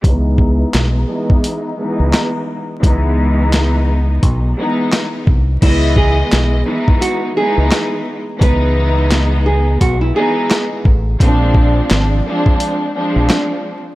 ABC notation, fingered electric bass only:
X:1
M:4/4
L:1/16
Q:"Swing 16ths" 1/4=86
K:C#m
V:1 name="Fingered electric bass" clef=bass
C,,4 B,,,2 z4 z C,, z4 | C,,8 B,,,2 z4 ^B,,,2 | C,,4 B,,,2 z4 z C,, z4 | C,,8 B,,,2 z4 A,,,2 |
^A,,,4 G,,,2 z4 z A,,, z4 |]